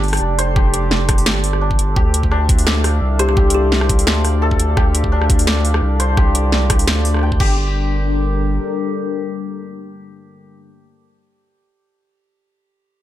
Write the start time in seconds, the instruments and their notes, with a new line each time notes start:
Already playing: sub bass G1, santur D4 G4 A4 C5 D5, analog synth pad G4 A4 D5
0.04 open hi-hat
0.08 open hi-hat
0.13 cross-stick, open hi-hat
0.17 sub bass F1, open hi-hat
0.38 santur C5, closed hi-hat
0.56 santur G4, kick, cross-stick
0.74 santur D5, closed hi-hat
0.91 snare
1.09 kick, cross-stick, closed hi-hat
1.18 open hi-hat
1.26 sub bass G1, santur D5, snare, closed hi-hat
1.44 open hi-hat
1.53 cross-stick
1.61 santur D4
1.71 kick
1.79 sub bass G1, closed hi-hat
1.96 sub bass D2, analog synth pad D4 E5 F5, santur G4, kick
2.14 closed hi-hat
2.23 kick
2.31 santur D4, cross-stick
2.49 kick, closed hi-hat
2.59 open hi-hat
2.67 santur D5, snare
2.84 cross-stick, open hi-hat
3.02 sub bass C2
3.19 kalimba G4, santur C5, closed hi-hat
3.29 kalimba G4, cross-stick
3.37 santur G4, kick
3.50 closed hi-hat
3.54 kalimba G4, santur D5
3.72 snare
3.81 cross-stick
3.89 kick, closed hi-hat
3.99 open hi-hat
4.07 sub bass D2, santur D5, snare
4.25 cross-stick, open hi-hat
4.42 santur A4
4.51 kick
4.60 sub bass D2, closed hi-hat
4.77 sub bass D2, santur G4, analog synth pad D5, kick, cross-stick
4.95 closed hi-hat
5.04 kick
5.12 santur D4
5.22 cross-stick
5.30 kick, closed hi-hat
5.39 open hi-hat
5.47 santur D5, snare
5.65 open hi-hat
5.74 cross-stick
5.82 sub bass C2
6.00 santur C5, closed hi-hat
6.17 santur G4, kick, cross-stick
6.35 santur D5, closed hi-hat
6.52 snare
6.70 kick, cross-stick, closed hi-hat
6.79 open hi-hat
6.87 sub bass D2, santur D5, snare, closed hi-hat
7.05 open hi-hat
7.14 cross-stick
7.17 cross-stick
7.19 santur G5, cross-stick
7.24 cross-stick
7.27 cross-stick
7.29 kick, cross-stick
7.40 sub bass G1, analog synth pad G3 D4 A4 A#4, santur G4, kick, crash